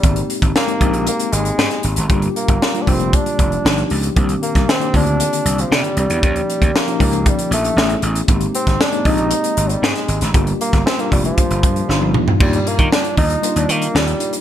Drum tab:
CC |----------------|----------------|----------------|----------------|
HH |xxxx-xxxxxxx-xxx|xxxx-xoxxxxx-xox|xxxx-xoxxxxx-xxx|xxxx-xoxxxxx-xxx|
SD |----o-------oo--|----o-------o---|---oo-------o---|----o-------o---|
T1 |----------------|----------------|----------------|----------------|
T2 |----------------|----------------|----------------|----------------|
FT |----------------|----------------|----------------|----------------|
BD |o--o--o---------|o--o--o-o-o-----|o--o--o---------|o--o--o-o-------|

CC |----------------|----------------|x---------------|
HH |xxxx-xoxxxxx-xxx|xxxx-xoxxxxx----|-xxx-xoxxxxx-xxx|
SD |---oo-------oo-o|---oo-------o---|----o-------o---|
T1 |----------------|-------------o--|----------------|
T2 |----------------|--------------o-|----------------|
FT |----------------|---------------o|----------------|
BD |o--o--o---------|o--o--o-o-o-----|o--o--o---------|